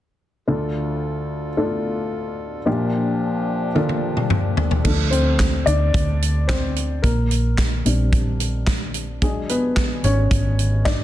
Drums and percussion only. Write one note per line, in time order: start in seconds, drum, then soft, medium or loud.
3.76 high tom soft
3.89 high tom soft
4.17 mid tom soft
4.30 mid tom medium
4.57 floor tom medium
4.71 floor tom medium
4.85 kick medium
4.85 crash medium
5.12 closed hi-hat medium
5.39 kick medium
5.39 snare medium
5.39 clap medium
5.39 closed hi-hat medium
5.67 closed hi-hat medium
5.94 kick medium
5.94 closed hi-hat medium
6.22 closed hi-hat medium
6.49 kick loud
6.49 snare medium
6.49 clap medium
6.49 closed hi-hat medium
6.76 closed hi-hat medium
7.04 kick medium
7.04 closed hi-hat medium
7.31 closed hi-hat medium
7.58 kick medium
7.58 snare medium
7.58 clap medium
7.58 closed hi-hat medium
7.86 closed hi-hat medium
8.13 kick loud
8.13 closed hi-hat medium
8.40 closed hi-hat medium
8.67 kick loud
8.67 snare medium
8.67 clap medium
8.67 closed hi-hat medium
8.94 closed hi-hat medium
9.22 kick medium
9.22 closed hi-hat medium
9.49 closed hi-hat medium
9.77 kick medium
9.77 snare medium
9.77 clap medium
9.77 closed hi-hat medium
10.04 closed hi-hat medium
10.31 kick medium
10.31 closed hi-hat medium
10.59 closed hi-hat medium
10.86 kick medium
10.86 snare medium
10.86 clap medium
10.86 closed hi-hat medium